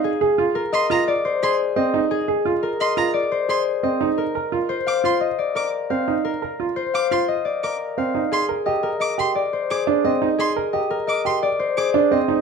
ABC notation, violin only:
X:1
M:6/4
L:1/8
Q:1/4=174
K:Cm
V:1 name="Violin"
z4 c' b z2 c' z3 | z4 c' b z2 c' z3 | z4 d' c' z2 d' z3 | z4 d' c' z2 d' z3 |
c' z3 d' c' z2 d' z3 | c' z3 d' c' z2 d' z3 |]